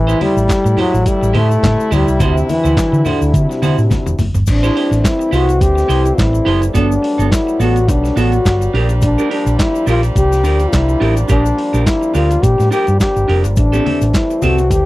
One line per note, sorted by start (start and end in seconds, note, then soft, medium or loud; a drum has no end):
0.00 0.13 A1 loud
0.00 4.31 C3 medium
0.00 0.24 E3 loud
0.00 2.17 G3 medium
0.00 2.17 A3 medium
0.00 4.31 E4 medium
0.07 0.19 E4 medium
0.07 0.19 G4 medium
0.07 0.20 C5 medium
0.07 shaker medium
0.20 0.81 G3 loud
0.20 0.34 E4 medium
0.20 0.35 G4 medium
0.20 0.35 C5 medium
0.20 open hi-hat medium
0.20 muted conga soft
0.20 high conga medium
0.36 0.46 A1 loud
0.36 muted clean electric guitar stroke soft
0.36 shaker medium
0.48 muted clean electric guitar stroke soft
0.48 muted fingered electric bass stroke soft
0.48 kick loud
0.48 snare loud
0.48 clap loud
0.48 closed hi-hat medium
0.48 muted conga soft
0.48 shaker medium
0.64 0.74 A2 medium
0.64 muted clean electric guitar stroke medium
0.64 shaker medium
0.77 1.09 F#3 loud
0.77 0.95 E4 medium
0.77 0.93 G4 medium
0.77 0.92 C5 loud
0.77 open hi-hat medium
0.77 muted conga soft
0.77 low conga medium
0.93 1.03 A1 medium
0.93 muted clean electric guitar stroke soft
0.93 shaker medium
1.06 1.38 G3 loud
1.06 kick loud
1.06 closed hi-hat medium
1.06 shaker medium
1.21 1.31 A1 loud
1.21 muted clean electric guitar stroke soft
1.21 shaker medium
1.33 1.56 A2 loud
1.33 1.95 A3 loud
1.33 1.51 E4 medium
1.33 1.49 G4 medium
1.33 1.49 C5 loud
1.33 open hi-hat medium
1.33 high conga medium
1.50 muted clean electric guitar stroke soft
1.50 shaker medium
1.63 1.75 A2 loud
1.63 kick loud
1.63 snare loud
1.63 clap loud
1.63 closed hi-hat medium
1.63 muted conga soft
1.63 high conga medium
1.63 shaker medium
1.78 muted clean electric guitar stroke soft
1.78 shaker medium
1.91 2.03 D2 loud
1.91 2.24 G3 loud
1.91 2.09 E4 medium
1.91 2.07 G4 loud
1.91 2.06 C5 loud
1.91 open hi-hat medium
1.91 high conga medium
1.91 low conga medium
1.91 shaker medium
2.07 2.17 C2 medium
2.07 muted clean electric guitar stroke soft
2.07 shaker medium
2.20 2.41 D2 loud
2.20 2.52 C3 loud
2.20 4.31 F#3 medium
2.20 4.31 D4 medium
2.20 2.37 E4 medium
2.20 2.35 F#4 loud
2.20 2.35 C5 loud
2.20 kick loud
2.20 closed hi-hat medium
2.20 muted conga soft
2.20 low conga medium
2.20 shaker medium
2.36 muted clean electric guitar stroke soft
2.36 shaker medium
2.49 3.10 E3 loud
2.49 muted clean electric guitar stroke soft
2.49 open hi-hat medium
2.49 high conga medium
2.49 shaker medium
2.64 2.74 D2 loud
2.64 2.76 E4 medium
2.64 2.76 F#4 medium
2.64 2.75 C5 medium
2.64 shaker medium
2.77 muted clean electric guitar stroke medium
2.77 muted fingered electric bass stroke medium
2.77 kick loud
2.77 snare loud
2.77 clap loud
2.77 closed hi-hat medium
2.77 shaker medium
2.92 3.02 D3 loud
2.92 muted clean electric guitar stroke medium
2.92 shaker soft
3.05 3.35 D3 loud
3.05 3.23 E4 medium
3.05 3.21 F#4 medium
3.05 3.20 C5 medium
3.05 open hi-hat medium
3.05 high conga medium
3.05 low conga medium
3.05 shaker medium
3.21 3.30 D2 medium
3.21 muted clean electric guitar stroke soft
3.21 shaker medium
3.34 4.17 C3 medium
3.34 3.45 D3 loud
3.34 muted clean electric guitar stroke soft
3.34 kick loud
3.34 closed hi-hat medium
3.34 muted conga soft
3.34 shaker medium
3.50 muted clean electric guitar stroke soft
3.50 snare soft
3.50 shaker medium
3.62 3.74 D3 loud
3.62 3.80 E4 medium
3.62 3.78 F#4 medium
3.62 3.77 C5 medium
3.62 open hi-hat medium
3.62 muted conga soft
3.62 high conga medium
3.62 shaker medium
3.78 3.87 A2 medium
3.78 muted clean electric guitar stroke medium
3.78 shaker soft
3.90 muted clean electric guitar stroke soft
3.90 kick medium
3.90 snare medium
3.90 closed hi-hat medium
3.90 high conga medium
3.90 shaker medium
4.06 4.16 E1 medium
4.06 muted clean electric guitar stroke soft
4.06 high tom medium
4.06 shaker medium
4.19 4.30 F#1 medium
4.19 mid tom loud
4.19 open hi-hat medium
4.19 high conga medium
4.19 low conga medium
4.19 shaker medium
4.34 4.44 G1 medium
4.34 muted clean electric guitar stroke soft
4.34 floor tom medium
4.34 shaker medium
4.47 4.69 A1 loud
4.47 6.73 E3 medium
4.47 14.86 G3 loud
4.47 8.70 A3 medium
4.47 6.73 C4 medium
4.47 5.08 D4 medium
4.47 muted clean electric guitar stroke soft
4.47 kick loud
4.47 closed hi-hat medium
4.47 crash loud
4.47 shaker medium
4.63 4.74 E4 medium
4.63 4.75 G4 medium
4.63 4.75 C5 medium
4.63 shaker medium
4.75 4.90 E4 medium
4.75 4.90 G4 medium
4.75 4.90 C5 medium
4.75 open hi-hat medium
4.91 5.01 A1 loud
4.91 muted clean electric guitar stroke soft
4.91 closed hi-hat soft
4.91 shaker medium
5.04 5.35 E4 loud
5.04 muted clean electric guitar stroke soft
5.04 kick loud
5.04 snare loud
5.04 clap loud
5.04 closed hi-hat medium
5.04 shaker loud
5.19 muted clean electric guitar stroke medium
5.19 shaker medium
5.31 5.61 C2 medium
5.31 5.50 E4 medium
5.31 5.63 F#4 loud
5.31 5.47 G4 medium
5.31 5.46 C5 medium
5.31 open hi-hat medium
5.31 shaker medium
5.48 muted clean electric guitar stroke medium
5.48 closed hi-hat medium
5.48 shaker medium
5.61 5.82 D2 medium
5.61 6.20 G4 loud
5.61 kick loud
5.61 closed hi-hat medium
5.61 shaker medium
5.75 muted clean electric guitar stroke medium
5.75 snare soft
5.75 shaker medium
5.88 6.10 C2 loud
5.88 6.06 E4 medium
5.88 6.04 G4 medium
5.88 6.03 C5 loud
5.88 open hi-hat medium
5.88 shaker medium
6.04 muted clean electric guitar stroke soft
6.04 closed hi-hat soft
6.04 shaker medium
6.18 6.39 A1 loud
6.18 6.63 E4 loud
6.18 kick loud
6.18 snare loud
6.18 clap medium
6.18 closed hi-hat medium
6.18 shaker medium
6.33 muted clean electric guitar stroke soft
6.33 shaker medium
6.45 6.67 F#1 medium
6.45 6.63 E4 loud
6.45 6.61 G4 loud
6.45 6.60 C5 loud
6.45 open hi-hat medium
6.61 muted clean electric guitar stroke soft
6.61 closed hi-hat soft
6.61 shaker medium
6.74 6.96 G1 loud
6.74 8.72 F#3 medium
6.74 6.92 B3 loud
6.74 8.72 B3 medium
6.74 7.34 D4 loud
6.74 6.89 F#4 medium
6.74 6.89 A4 loud
6.74 kick loud
6.74 closed hi-hat medium
6.74 shaker medium
6.90 muted clean electric guitar stroke soft
6.90 shaker medium
7.02 muted clean electric guitar stroke soft
7.02 open hi-hat medium
7.18 7.28 G1 loud
7.18 7.29 B3 medium
7.18 7.30 F#4 medium
7.18 7.30 A4 medium
7.18 closed hi-hat soft
7.18 shaker medium
7.31 7.63 E4 medium
7.31 muted clean electric guitar stroke soft
7.31 kick loud
7.31 snare loud
7.31 clap loud
7.31 closed hi-hat medium
7.31 shaker medium
7.47 muted clean electric guitar stroke medium
7.47 shaker medium
7.60 7.88 A1 medium
7.60 7.78 B3 medium
7.60 7.75 F#4 medium
7.60 7.91 F#4 medium
7.60 7.74 A4 medium
7.60 open hi-hat medium
7.60 shaker medium
7.76 muted clean electric guitar stroke medium
7.76 closed hi-hat medium
7.76 shaker medium
7.88 8.09 B1 loud
7.88 8.20 D4 medium
7.88 muted clean electric guitar stroke soft
7.88 kick loud
7.88 closed hi-hat medium
7.88 shaker medium
8.04 muted clean electric guitar stroke medium
8.04 snare soft
8.04 shaker medium
8.16 8.38 A1 medium
8.16 8.34 B3 medium
8.16 8.32 F#4 loud
8.16 8.74 F#4 loud
8.16 8.31 A4 medium
8.16 open hi-hat medium
8.16 shaker medium
8.32 muted clean electric guitar stroke soft
8.32 closed hi-hat soft
8.32 shaker soft
8.45 8.66 G1 loud
8.45 kick loud
8.45 snare loud
8.45 clap loud
8.45 closed hi-hat medium
8.45 shaker medium
8.61 muted clean electric guitar stroke medium
8.61 shaker medium
8.73 9.16 A#1 loud
8.73 13.53 F3 medium
8.73 13.53 A#3 medium
8.73 13.53 D4 medium
8.73 8.91 D4 medium
8.73 8.89 G4 loud
8.73 8.88 A#4 loud
8.73 open hi-hat medium
8.89 muted clean electric guitar stroke medium
8.89 closed hi-hat medium
8.89 shaker medium
9.02 9.30 D4 medium
9.02 muted clean electric guitar stroke soft
9.02 kick loud
9.02 closed hi-hat medium
9.02 shaker medium
9.18 9.29 D4 medium
9.18 9.30 G4 medium
9.18 9.30 A#4 medium
9.18 shaker medium
9.30 9.44 D4 medium
9.30 9.63 D4 medium
9.30 9.45 G4 medium
9.30 9.45 A#4 medium
9.30 open hi-hat medium
9.46 9.56 A#1 loud
9.46 muted clean electric guitar stroke soft
9.46 closed hi-hat soft
9.46 shaker medium
9.59 9.89 E4 loud
9.59 muted clean electric guitar stroke soft
9.59 kick loud
9.59 snare loud
9.59 clap loud
9.59 closed hi-hat medium
9.59 shaker medium
9.75 muted clean electric guitar stroke soft
9.75 shaker medium
9.87 10.08 A#1 medium
9.87 10.05 D4 medium
9.87 10.02 F4 loud
9.87 10.02 G4 loud
9.87 10.02 A#4 loud
9.87 open hi-hat medium
9.87 shaker medium
10.03 muted clean electric guitar stroke soft
10.03 closed hi-hat medium
10.03 shaker medium
10.16 10.44 C2 loud
10.16 10.70 G4 loud
10.16 kick loud
10.16 closed hi-hat medium
10.16 shaker medium
10.31 muted clean electric guitar stroke soft
10.31 snare soft
10.31 shaker medium
10.44 10.65 D2 loud
10.44 10.62 D4 medium
10.44 10.59 G4 medium
10.44 10.58 A#4 medium
10.44 open hi-hat medium
10.44 shaker medium
10.59 muted clean electric guitar stroke soft
10.59 closed hi-hat soft
10.59 shaker soft
10.69 10.76 F4 medium
10.69 kick loud
10.73 10.94 C2 loud
10.73 11.18 E4 loud
10.73 snare loud
10.73 clap loud
10.73 closed hi-hat medium
10.73 shaker medium
10.88 muted clean electric guitar stroke soft
10.88 shaker medium
11.00 11.22 A1 loud
11.00 11.18 D4 loud
11.00 11.16 G4 loud
11.00 11.15 A#4 loud
11.00 open hi-hat medium
11.16 muted clean electric guitar stroke soft
11.16 closed hi-hat soft
11.16 shaker medium
11.28 11.50 A#1 loud
11.28 11.46 D4 medium
11.28 11.89 D4 loud
11.28 11.45 G4 medium
11.28 11.43 A#4 medium
11.28 kick loud
11.28 closed hi-hat medium
11.28 shaker medium
11.45 muted clean electric guitar stroke soft
11.45 shaker medium
11.58 muted clean electric guitar stroke soft
11.58 open hi-hat medium
11.73 11.83 A#1 loud
11.73 11.85 D4 medium
11.73 11.85 G4 medium
11.73 11.85 A#4 medium
11.73 closed hi-hat soft
11.73 shaker medium
11.86 12.17 E4 medium
11.86 muted clean electric guitar stroke soft
11.86 kick loud
11.86 snare loud
11.86 clap loud
11.86 closed hi-hat medium
11.86 shaker medium
12.02 muted clean electric guitar stroke soft
12.02 shaker medium
12.14 12.36 D2 medium
12.14 12.32 D4 medium
12.14 12.45 F4 medium
12.14 12.30 G4 medium
12.14 12.29 A#4 medium
12.14 open hi-hat medium
12.14 shaker medium
12.30 muted clean electric guitar stroke medium
12.30 closed hi-hat medium
12.30 shaker medium
12.42 12.55 A#2 loud
12.42 12.72 G4 loud
12.42 muted clean electric guitar stroke soft
12.42 kick loud
12.42 closed hi-hat medium
12.42 shaker medium
12.58 12.69 A2 loud
12.58 muted clean electric guitar stroke medium
12.58 snare soft
12.58 shaker medium
12.71 12.89 D4 medium
12.71 12.87 G4 medium
12.71 12.99 G4 loud
12.71 12.86 A#4 loud
12.71 open hi-hat medium
12.71 shaker medium
12.87 12.97 G2 medium
12.87 muted clean electric guitar stroke soft
12.87 closed hi-hat soft
12.87 shaker medium
13.00 13.42 G4 loud
13.00 kick loud
13.00 snare loud
13.00 clap medium
13.00 closed hi-hat medium
13.00 shaker medium
13.15 13.25 G1 medium
13.15 muted clean electric guitar stroke soft
13.15 shaker medium
13.28 13.45 F1 loud
13.28 13.46 D4 medium
13.28 13.44 G4 medium
13.28 13.43 A#4 medium
13.28 open hi-hat medium
13.44 13.54 G1 medium
13.44 muted clean electric guitar stroke medium
13.44 closed hi-hat medium
13.44 shaker medium
13.56 13.78 A1 loud
13.56 14.86 E3 medium
13.56 14.86 A3 medium
13.56 14.86 C4 medium
13.56 14.16 D4 medium
13.56 muted clean electric guitar stroke soft
13.56 kick loud
13.56 closed hi-hat medium
13.56 muted conga soft
13.56 shaker medium
13.72 13.84 C4 medium
13.72 13.84 G4 medium
13.72 13.85 A4 medium
13.72 shaker medium
13.85 13.99 C4 medium
13.85 14.00 G4 medium
13.85 14.00 A4 medium
13.85 open hi-hat medium
13.85 high conga medium
14.01 14.11 A1 medium
14.01 muted clean electric guitar stroke medium
14.01 closed hi-hat soft
14.01 shaker medium
14.13 14.45 E4 medium
14.13 muted clean electric guitar stroke soft
14.13 kick loud
14.13 snare loud
14.13 clap loud
14.13 closed hi-hat medium
14.13 muted conga soft
14.13 shaker medium
14.30 muted clean electric guitar stroke medium
14.30 shaker medium
14.42 14.70 C2 medium
14.42 14.60 C4 medium
14.42 14.73 F#4 medium
14.42 14.58 G4 medium
14.42 14.57 A4 medium
14.42 open hi-hat medium
14.42 muted conga soft
14.42 high conga medium
14.42 low conga medium
14.42 shaker medium
14.58 muted clean electric guitar stroke soft
14.58 closed hi-hat medium
14.58 shaker medium
14.70 14.86 D2 medium
14.70 14.86 G4 loud
14.70 kick loud
14.70 closed hi-hat medium
14.70 shaker medium